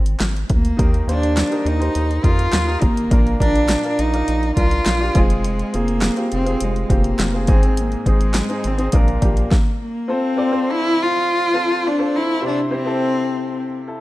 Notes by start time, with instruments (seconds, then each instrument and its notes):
Already playing: analog synth bass G#1
0.06 closed hi-hat
0.20 analog synth bass G#1, snare, clap, closed hi-hat
0.36 closed hi-hat
0.50 analog synth bass D2, cello A#3, kick, closed hi-hat
0.65 closed hi-hat
0.77 analog synth bass D#2, grand piano D#3 D#4 G4 A#4, kick, closed hi-hat
0.94 closed hi-hat
1.07 analog synth bass D#2, grand piano A#3 G4 C5, cello D4, closed hi-hat
1.23 closed hi-hat
1.37 snare, clap, closed hi-hat
1.51 grand piano D#4 G4 A#4, closed hi-hat
1.65 analog synth bass D#2, cello D#4, closed hi-hat
1.79 grand piano D#4 G4 C5, closed hi-hat
1.95 analog synth bass D#2, closed hi-hat
2.11 closed hi-hat
2.23 analog synth bass F2, grand piano D#4 G4 A#4, cello F4, kick, closed hi-hat
2.39 closed hi-hat
2.53 analog synth bass D#2, snare, clap, closed hi-hat
2.66 grand piano D#4 G4 A#4
2.82 analog synth bass G#1, cello A#3, kick, closed hi-hat
2.97 closed hi-hat
3.11 analog synth bass A#1, grand piano A#2 D4 F4 A#4, kick, closed hi-hat
3.27 closed hi-hat
3.40 analog synth bass A#1, cello D4, grand piano D4 F4 A#4, kick, closed hi-hat
3.56 closed hi-hat
3.69 snare, clap, closed hi-hat
3.84 grand piano D4 F4 A#4, closed hi-hat
3.99 analog synth bass A#1, cello D#4, closed hi-hat
4.13 grand piano F4 A#4 D5, closed hi-hat
4.28 analog synth bass A#1, closed hi-hat
4.43 closed hi-hat
4.57 analog synth bass C2, grand piano D4 F4 A#4, cello F4, kick, closed hi-hat
4.71 closed hi-hat
4.86 analog synth bass A#1, snare, clap, closed hi-hat
5.00 grand piano D4 F4 G4
5.14 analog synth bass F1, cello G#3, grand piano C4 F4 G#4, kick, closed hi-hat
5.30 closed hi-hat
5.44 closed hi-hat
5.59 closed hi-hat
5.73 analog synth bass F1, cello A#3, grand piano C4 F4 G#4, closed hi-hat
5.88 closed hi-hat
6.01 snare, clap, closed hi-hat
6.17 grand piano C4 F4 G4, closed hi-hat
6.32 analog synth bass F1, cello C4, closed hi-hat
6.45 grand piano C4 F4 G#4, closed hi-hat
6.61 analog synth bass F1, cello G#3, closed hi-hat
6.76 closed hi-hat
6.90 analog synth bass F1, cello A#3, grand piano C4 F4 G4, kick, closed hi-hat
7.04 closed hi-hat
7.19 analog synth bass F1, snare, clap, closed hi-hat
7.34 grand piano C4 F4 G#4
7.47 analog synth bass G#1, grand piano G#2 C4 D#4 G#4, cello C4, kick, closed hi-hat
7.63 closed hi-hat
7.77 cello A#3, closed hi-hat
7.92 closed hi-hat
8.06 analog synth bass G#1, cello G#3, grand piano C4 D#4 G#4, kick, closed hi-hat
8.21 closed hi-hat
8.34 snare, clap, closed hi-hat
8.49 grand piano C4 D#4 G#4, closed hi-hat
8.64 analog synth bass G#1, cello C4, closed hi-hat
8.78 grand piano C4 D#4 G#4, closed hi-hat
8.92 analog synth bass A#1, grand piano A#2 D4 F4 A#4, cello A#3, kick, closed hi-hat
9.08 closed hi-hat
9.21 analog synth bass A#1, grand piano D4 F4 G4, kick, closed hi-hat
9.37 closed hi-hat
9.51 kick, snare
9.83 cello A#3
10.08 grand piano C4 F4 A4 C5
10.12 cello C4
10.37 grand piano C4 F4 A4 D5
10.51 grand piano C4 F4 A4 C5
10.71 cello E4
11.02 cello F4
11.54 grand piano C4 F4 A4 C5
11.87 cello D4
11.99 grand piano C4 F4 A4 C5
12.16 cello E4
12.41 grand piano C3 C4 E4 G4 C5
12.46 cello D4
12.71 grand piano C4 E4 G4 C5
12.75 cello C4
12.85 grand piano C4 E4 G4 A4
13.88 grand piano E4 A4